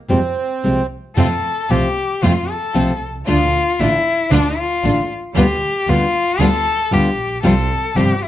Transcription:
0.08 double bass F2, nylon-string guitar C3 F3 G#3 C4 G4, bandoneon C4
0.64 double bass C2, nylon-string guitar C3 F3 G#3 C4 G4
1.17 double bass F2, nylon-string guitar C3 F3 A3 C4 F4, string section A3 C4 F4, cello A4
1.69 double bass C2, nylon-string guitar C3 F3 A3 C4 F4, string section A3 C4 F4, cello G4
2.22 double bass F2, nylon-string guitar C3 F3 A3 C4 F4, string section A3 C4 F4, cello F4
2.51 cello A4
2.74 double bass C2, nylon-string guitar C3 F3 A3 C4 F4, string section A3 C4 F4
3.02 double bass C2
3.26 double bass D2, nylon-string guitar D3 A3 D4 F4, string section A3 D4 F4, cello F4
3.79 double bass A1, nylon-string guitar D3 A3 D4 F4, string section A3 D4 F4, cello E4
4.31 double bass D2, nylon-string guitar D3 A3 D4 F4, string section A3 D4 F4, cello D4
4.58 cello F4
4.83 double bass A1, nylon-string guitar D3 A3 D4 F4, string section A3 D4 F4
5.34 double bass D2, nylon-string guitar D3 G3 B3 F4, string section G3 B3 F4, cello G4
5.87 double bass D2, nylon-string guitar D3 G3 B3 F4, string section G3 B3 F4, cello F4
6.39 double bass D2, nylon-string guitar D3 G3 B3 F4, string section G3 B3 F4, cello A4
6.91 double bass D2, nylon-string guitar D3 G3 B3 F4, string section G3 B3 F4, cello G4
7.18 double bass A#1
7.43 double bass C2, nylon-string guitar C3 F3 G3 C4 F4, string section G3 C4 F4, cello A4
7.95 double bass G1, nylon-string guitar C3 F3 G3 C4 F4, string section G3 C4 F4, cello G4
8.23 cello E4

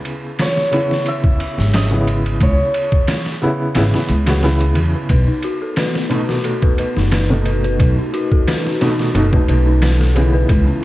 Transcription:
Already playing: felt piano C#3 B3 E4, hammered dulcimer B4
0.05 ride
0.39 hammered dulcimer C#5, snare, ride
0.57 snare
0.71 felt piano C#3 B3 E4, ride
0.91 snare
1.06 hammered dulcimer E5, ride
1.24 kick
1.40 ride
1.58 upright bass G#1, snare
1.74 hammered dulcimer D#5, snare, ride
1.91 felt piano C#3 B3 E4
2.07 ride
2.26 ride
2.40 upright bass C#2, hammered dulcimer C#5, kick, ride
2.74 ride
2.92 kick
3.08 snare, ride
3.26 snare
3.42 felt piano C#3 B3 E4
3.75 upright bass G#1, felt piano C#3 B3 E4, snare, ride
3.94 felt piano C#3 B3 E4, snare
4.08 upright bass C#2, ride
4.26 felt piano C#3 B3 F#4, snare, ride
4.43 felt piano C#3 B3 E4, snare
4.61 ride
4.75 upright bass E2, ride
5.09 upright bass B1, ambient pad A3 B3 D#4 F#4, synth bell B4, kick, ride
5.28 synth bell D#4
5.42 synth bell F#4, ride
5.62 synth bell A4
5.76 synth bell B4, snare, ride
5.95 synth bell B4, snare
6.10 felt piano B2 A3 D#4, synth bell D#4, ride
6.29 synth bell F#4, snare
6.44 synth bell A4, ride
6.62 synth bell B4, kick
6.78 synth bell B4, ride
6.97 upright bass F#1, synth bell D#4, snare
7.12 synth bell B4, snare, ride
7.30 felt piano B2 A3 D#4, synth bell A4
7.45 synth bell B4, ride
7.64 synth bell B4, ride
7.80 upright bass B1, ambient pad C#4, synth bell B4, kick, ride
7.99 synth bell D#4
8.14 synth bell F#4, ride
8.32 synth bell A4, kick
8.48 synth bell B4, snare, ride
8.66 synth bell B4, snare
8.81 felt piano B2 A3 D#4, synth bell D#4, snare, ride
8.99 synth bell F#4, snare
9.15 upright bass F#1, felt piano B2 A3 D#4, synth bell A4, ride
9.33 felt piano B2 A3 D#4, synth bell B4, kick
9.48 upright bass B1, synth bell B4, ride
9.67 synth bell D#4
9.82 synth bell B4, snare, ride
10.01 synth bell A4, snare
10.15 felt piano C#3 E3 B3, synth bell B4, ride
10.34 synth bell B4
10.49 upright bass C#2, ambient pad C#3 G#3 B3 E4, synth bell B4, kick, ride
10.68 synth bell C#4

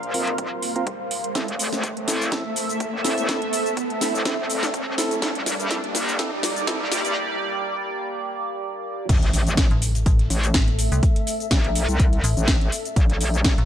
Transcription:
Already playing: wobble bass A#1, analog synth pad A#3 A#4 C5 F5, ambient pad A#4 F5 C6, riser
0.03 closed hi-hat
0.14 wobble bass F1, synth stab C4 F4 A#4, open hi-hat
0.27 closed hi-hat
0.38 kick, closed hi-hat
0.62 open hi-hat
0.76 synth stab C4 F4 A#4, closed hi-hat
0.87 kick, closed hi-hat
1.11 open hi-hat
1.24 closed hi-hat
1.35 wobble bass A1, analog synth pad A3 A4 E5, synth stab C4 E4 A4, ambient pad A4, kick, snare, closed hi-hat, shaker
1.48 closed hi-hat
1.59 ambient pad E5, open hi-hat, shaker
1.72 wobble bass A1, snare, closed hi-hat, shaker
1.83 ambient pad A5, kick, closed hi-hat, shaker
1.97 wobble bass A1, closed hi-hat
2.08 synth stab C4 E4 A4, snare, open hi-hat, shaker
2.22 shaker
2.32 synth stab C4 E4 A4, kick, snare, closed hi-hat, shaker
2.56 open hi-hat, shaker
2.69 closed hi-hat, shaker
2.80 kick, closed hi-hat, shaker
2.93 wobble bass A1
3.04 synth stab C4 E4 A4, snare, open hi-hat, shaker
3.18 wobble bass A1, closed hi-hat, shaker
3.29 synth stab C4 E4 A4, kick, snare, closed hi-hat, shaker
3.42 closed hi-hat
3.53 open hi-hat, shaker
3.66 closed hi-hat, shaker
3.77 kick, closed hi-hat, shaker
3.90 closed hi-hat
4.01 synth stab C4 E4 A4, snare, open hi-hat, shaker
4.14 wobble bass A1, shaker
4.25 synth stab C4 E4 A4, kick, snare, closed hi-hat, shaker
4.50 wobble bass G1, open hi-hat, shaker
4.63 snare, closed hi-hat, shaker
4.74 kick, closed hi-hat, shaker
4.87 wobble bass A1
4.98 synth stab C4 E4 A4, snare, open hi-hat, shaker
5.11 closed hi-hat, shaker
5.22 wobble bass G1, analog synth pad G3 A#3 G4 D5, synth stab C4 E4 A4, ambient pad G4, kick, snare, closed hi-hat, shaker
5.35 closed hi-hat
5.46 snare, open hi-hat, shaker
5.59 wobble bass G2, closed hi-hat, shaker
5.71 synth stab C4 E4 A4, kick, snare, closed hi-hat, shaker
5.79 ambient pad D5
5.84 wobble bass G1, closed hi-hat
5.95 snare, open hi-hat, shaker
6.09 shaker
6.19 synth stab C4 E4 A4, kick, snare, closed hi-hat, shaker
6.43 snare, open hi-hat, shaker
6.56 closed hi-hat, shaker
6.67 synth stab C4 E4 A4, kick, snare, closed hi-hat, shaker
6.81 wobble bass G2
6.92 snare, open hi-hat, shaker
7.05 wobble bass G2, closed hi-hat, shaker
9.09 wobble bass A1, analog synth pad A3 A4 C5 E5, ambient pad A4, kick, closed hi-hat, crash, impact, shaker
9.22 snare, closed hi-hat
9.33 wobble bass A1, closed hi-hat, open hi-hat, shaker
9.40 ambient pad E5
9.47 closed hi-hat, shaker
9.57 kick, snare, closed hi-hat, shaker
9.71 fm bass A1, snare, closed hi-hat
9.82 closed hi-hat, open hi-hat, shaker
9.95 closed hi-hat, shaker
10.06 fm bass A1, kick, closed hi-hat, shaker
10.19 snare, closed hi-hat
10.30 wobble bass A1, closed hi-hat, open hi-hat, shaker
10.43 closed hi-hat, shaker
10.54 fm bass A1, kick, snare, closed hi-hat, shaker
10.68 closed hi-hat
10.79 closed hi-hat, open hi-hat, shaker
10.92 fm bass C2, closed hi-hat, shaker
11.03 analog synth pad D5, kick, closed hi-hat, shaker
11.16 closed hi-hat
11.27 closed hi-hat, open hi-hat, shaker
11.40 closed hi-hat, shaker
11.51 wobble bass A#1, kick, snare, closed hi-hat, shaker
11.64 closed hi-hat
11.75 snare, closed hi-hat, open hi-hat, shaker
11.89 wobble bass C2, closed hi-hat, shaker
12.00 kick, closed hi-hat, shaker
12.13 closed hi-hat
12.24 fm bass A1, closed hi-hat, open hi-hat, shaker
12.37 wobble bass A1, closed hi-hat, shaker
12.48 kick, snare, closed hi-hat, shaker
12.61 snare, closed hi-hat
12.72 closed hi-hat, open hi-hat, shaker
12.85 closed hi-hat, shaker
12.96 wobble bass A#1, ambient pad A#4, kick, closed hi-hat, shaker
13.10 snare, closed hi-hat
13.21 wobble bass A#1, closed hi-hat, open hi-hat, shaker
13.34 ambient pad F5, closed hi-hat, shaker
13.45 kick, snare, closed hi-hat, shaker
13.58 fm bass A#1, snare, closed hi-hat

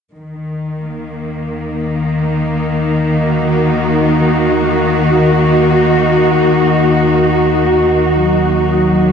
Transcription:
0.12 synth drone D#2 D#3, cello section D#3
0.82 cello section A#3
1.79 cello section D#4
3.15 cello section F#4
8.19 cello section F#3
9.09 cello section C#4

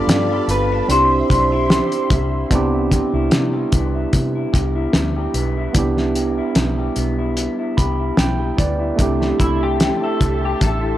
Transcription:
Already playing: clean electric guitar G2 D4 D5, tine electric piano B3 D4 F4 A4, string machine G4 F5 A5 B5
0.07 fingered electric bass G2, clean electric guitar G4, snare, closed hi-hat
0.31 clean electric guitar A4
0.48 fingered electric bass G1, clean electric guitar C4 B4, closed hi-hat
0.72 clean electric guitar D4
0.88 fingered electric bass C2, tine electric piano C4 D4 E4, clean electric guitar C5, string machine E5 C6, closed hi-hat
0.92 tine electric piano G4
1.30 fingered electric bass B1, clean electric guitar D4, kick, closed hi-hat
1.52 clean electric guitar E4
1.70 clean electric guitar G4, snare, closed hi-hat
1.92 closed hi-hat
2.10 fingered electric bass C2, clean electric guitar E4, kick, closed hi-hat
2.50 fingered electric bass C2, clean electric guitar C3, tine electric piano B3 D4 E4, kick, closed hi-hat
2.55 tine electric piano G4
2.73 clean electric guitar E4
2.91 clean electric guitar G4, kick, closed hi-hat
3.13 fingered electric bass C2, clean electric guitar E4
3.31 fingered electric bass C3, clean electric guitar G3, snare, closed hi-hat
3.53 clean electric guitar G4
3.72 fingered electric bass C2, clean electric guitar B3, kick, closed hi-hat
3.94 clean electric guitar E4
4.13 fingered electric bass C3, kick, closed hi-hat
4.35 clean electric guitar E4
4.53 fingered electric bass C2, clean electric guitar G4, kick, closed hi-hat
4.75 clean electric guitar E4
4.93 fingered electric bass D2, clean electric guitar G3, snare, closed hi-hat
5.16 clean electric guitar G4
5.34 fingered electric bass B1, clean electric guitar B3, closed hi-hat
5.57 clean electric guitar E4
5.73 fingered electric bass C2, tine electric piano B3 D4 E4, kick, closed hi-hat
5.78 tine electric piano G4
5.97 clean electric guitar E4, snare
6.15 clean electric guitar G4, closed hi-hat
6.38 clean electric guitar E4
6.55 fingered electric bass B1, clean electric guitar G3, snare, closed hi-hat
6.78 clean electric guitar G4
6.96 fingered electric bass B1, clean electric guitar B3, closed hi-hat
7.19 clean electric guitar E4
7.37 closed hi-hat
7.59 clean electric guitar E4
7.77 fingered electric bass C2, clean electric guitar G4, tine electric piano B5, kick, closed hi-hat
7.99 clean electric guitar E4
8.17 fingered electric bass B1, clean electric guitar G3, tine electric piano G5, snare, closed hi-hat
8.39 clean electric guitar G4
8.57 fingered electric bass D2, clean electric guitar B3, tine electric piano D5, kick, closed hi-hat
8.79 clean electric guitar E4
8.96 fingered electric bass C2, clean electric guitar C3, tine electric piano A3 D4 E4, string machine G4 E5 A5 C6, kick, closed hi-hat
9.01 tine electric piano G4
9.20 clean electric guitar E4, snare
9.39 fingered electric bass C2, clean electric guitar A3 E4, kick, closed hi-hat
9.61 clean electric guitar E4 G4
9.78 clean electric guitar A3 G4, snare, closed hi-hat
10.00 clean electric guitar E4 A4
10.19 fingered electric bass C2, clean electric guitar A3, kick, closed hi-hat
10.41 clean electric guitar G4
10.45 clean electric guitar G4
10.61 fingered electric bass A1, clean electric guitar A4, kick, closed hi-hat
10.82 clean electric guitar E4

